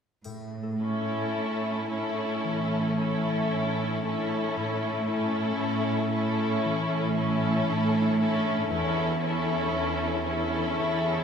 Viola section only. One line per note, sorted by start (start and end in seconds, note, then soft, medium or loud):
0.81 1.88 C#4 soft
1.90 2.96 C#4 soft
2.98 4.03 C#4 soft
4.05 5.07 C#4 soft
5.09 6.11 C#4 soft
6.12 7.15 C#4 soft
7.16 8.17 C#4 soft
8.19 8.69 C#4 soft
8.70 9.20 C#4 soft
9.21 10.23 C#4 soft
10.25 11.24 C#4 soft